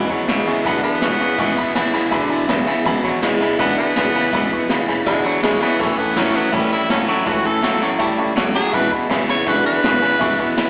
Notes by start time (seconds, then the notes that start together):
Already playing: E2 B2 E3 G#3 B3
0.08 F#3 G#3 B3 E4 E5 G#5 B5, kick, ride
0.13 E3
0.28 E1 E2 C#3 E3 G#3 B3 E4 E5 G#5 C#6, snare, ride
0.46 E2 C#3 E3 G#3 B3 E4 E5 G#5 C#6, muted upright bass stroke, snare, ride
0.65 E1 E2 B2 D3 E3 G#3 B3 E4 E5 G#5 B5, kick, ride
0.83 E3 G#3 B3 E4 E5 G#5 B5, muted upright bass stroke, ride
1.02 E1 E2 C#3 E3 G#3 B3 E4 E5 G#5 C#6, snare, ride
1.19 E2 C#3 E3 G#3 B3 E4 E5 G#5 C#6, muted upright bass stroke, ride
1.38 G#1 E2 B2 E3 G#3 B3 E4 E5 G#5 C#6, kick, ride
1.56 E3 G#3 B3 E4 E5 G#5 B5, kick, ride
1.75 E1 E2 C#3 E3 G#3 B3 E4 E5 G#5 B5, snare, ride
1.92 E1 E2 C#3 E3 G#3 B3 E4 E5 G#5 B5, ride
2.11 E1 E2 B2 D3 E3 G#3 B3 E4 E5 G#5 B5, kick, ride
2.29 G#1 E3 G#3 B3 E4 E5 G#5 B5, ride
2.47 B1 E2 C#3 E3 G#3 B3 E4 E5 G#5 B5, snare, ride
2.66 E2 C#3 E3 G#3 B3 E4 E5 G#5 B5, muted upright bass stroke, ride
2.85 E1 E2 B2 E3 G#3 B3 E4 E5 G#5 B5, kick, ride
3.03 E3 F#3 G#3 B3 E4 E5 G#5 B5, kick, ride
3.22 E1 E2 C#3 E3 G#3 B3 E4 E5 G#5 B5, snare, ride
3.40 E2 C#3 E3 G#3 B3 E4 E5 G#5 B5, muted upright bass stroke, ride
3.59 E1 E2 B2 D3 E3 G#3 B3 E4 E5 G#5 B5, kick, ride
3.77 E3 G#3 B3 E4 E5 G#5 B5, ride
3.95 E1 E2 C#3 E3 G#3 B3 E4 E5 G#5 B5, snare, ride
4.14 E2 C#3 E3 G#3 B3 E4 E5 G#5 B5, muted upright bass stroke, ride
4.33 G#1 E2 B2 E3 G#3 B3 E4 E5 G#5 B5, kick, ride
4.51 E3 G#3 B3 E4 E5 G#5 C#6, kick, ride
4.69 E1 E2 C#3 E3 G#3 B3 E4 E5 G#5 B5, snare, ride
4.87 E1 E2 C#3 E3 G#3 B3 E4 E5 G#5 B5, ride
5.05 E1 E2 B2 D3 E3 G#3 B3 E4 E5 G#5 B5, kick, ride
5.24 G#1 E3 F#3 G#3 B3 E4 E5 G#5 B5, ride
5.42 B1 E2 C#3 E3 G#3 B3 E4 E5 G#5 B5, snare, ride
5.60 E2 C#3 E3 G#3 B3 E4 E5 G#5 B5, muted upright bass stroke, ride
5.79 A1 A2 E3 A3 C#4 E4 E5 A5 C#6, kick, ride
5.97 A3 B3 C#4 E4 E5 A5 C#6, muted upright bass stroke, kick, ride
6.16 A1 A2 E3 F#3 A3 C#4 E4 E5 A5 B5, snare, ride
6.34 A2 F#3 A3 B3 C#4 E4 E5 A5 C#6, muted upright bass stroke, ride
6.52 A1 A2 E3 G3 A3 C#4 E4 E5 A5 B5, kick, ride
6.70 A3 C#4 E4 E5 A5 B5, muted upright bass stroke, ride
6.89 A1 A2 E3 F#3 A3 C#4 E4 E5 A5 B5, snare, ride
7.07 A2 F#3 A3 C#4 E4 E5 A5 C#6, muted upright bass stroke, ride
7.25 C#2 A2 E3 A3 C#4 E4 F#4 E5 A5 C#6, kick, ride
7.44 A3 C#4 E4 A4 E5 A5 C#6, muted upright bass stroke, kick, ride
7.62 A1 A2 E3 F#3 A3 C#4 E4 E5 A5 C#6, snare, ride
7.81 A1 A2 F#3 A3 C#4 E4 E5 A5 C#6, snare, ride
7.99 A1 A2 E3 G3 A3 C#4 E4 E5 A5 C#6, kick, ride
8.18 C#2 A3 C#4 E4 E5 A5 C#6, ride
8.36 F#1 A2 E3 F#3 A3 C#4 E4 E5 A5 C#6, snare, ride
8.54 A2 F#3 A3 C#4 E4 G#4 E5 A5 C#6, muted upright bass stroke, ride
8.72 E1 E2 B2 E3 G#3 B3 E4 B4 E5 G#5 B5, kick, ride
8.91 E3 G#3 B3 E4 E5 G#5 B5, kick, ride
9.09 E1 E2 C#3 E3 G#3 B3 E4 E5 G#5 B5, snare, ride
9.27 E2 C#3 E3 G#3 B3 E4 C#5 E5 G#5 B5, muted upright bass stroke, snare, ride
9.46 E1 E2 B2 D3 E3 G#3 B3 E4 B4 E5 G#5 C#6, kick, ride
9.64 E3 G#3 B3 E4 B4 E5 G#5 C#6, muted upright bass stroke, ride
9.83 E1 E2 C#3 E3 G#3 B3 E4 E5 G#5 B5, snare, ride
10.01 E2 C#3 E3 G#3 B3 E4 E5 G#5 B5, muted upright bass stroke, ride
10.19 G#1 E2 B2 E3 G#3 B3 E4 E5 G#5 C#6, kick, ride
10.38 E3 G#3 B3 E4 E5 G#5 C#6, kick, ride
10.56 E1 E2 C#3 E3 G#3 B3 E4 E5 G#5 B5, snare, ride